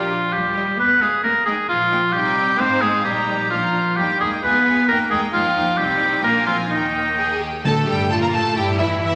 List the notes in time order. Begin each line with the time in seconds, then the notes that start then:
Already playing: A#1 F3 F4 A#4 D5
0.12 F4
0.33 D#2 G3 G4
0.55 G3 G4 D#5
0.79 D2 B3 B4
1.01 G#3 F4 G#4 F5
1.24 D#2 A#3 A#4
1.46 G#3 A#3 D#4 G#4 G5
1.69 A#1 F3 F4
1.92 A#3 D#4 G5
2.13 C2 G3 C4 D#4 G4 G5
2.59 G#1 C4 D#4 C5 F5
2.81 G#3 G#4
3.05 A#1 G3 A#3 D#4 G4 A#5
3.51 A#1 F3 A#3 D4 F4 A#5
3.97 D#2 G3 A#3 D#4 G4 G5
4.20 D#2 G#3 A#3 D#4 G#4 G5
4.43 D2 G#3 B3 F4 B4 G#5
4.65 D2 G#3 F4 G#5
4.88 D#2 A#3 D#4 A#4 G5
5.09 D#2 G#3 A#3 D#4 G#4 G5
5.33 D#2 F3 A#3 D#4 F4 G5
5.55 D#2 A#3 D#4 G5
5.76 C2 G3 C4 D#4 G4 G5
6.22 A#1 A#3 D4 F4 A#4 G#5
6.47 F3 C4 F4
6.69 D#2 D#3 A#3 D#4 G5
7.16 G#4
7.40 G4
7.64 A2 D3 A3 A4 A5
7.86 G2 G3 G4 G5
8.09 A2 A3 F4 A4 A5
8.21 A#2 A#3 A#4 A#5
8.33 A2 A3 A4 A5
8.55 G2 G3 E4 G4 G5
8.78 E2 E3 E4 E5
9.01 E2 E3 E4 E5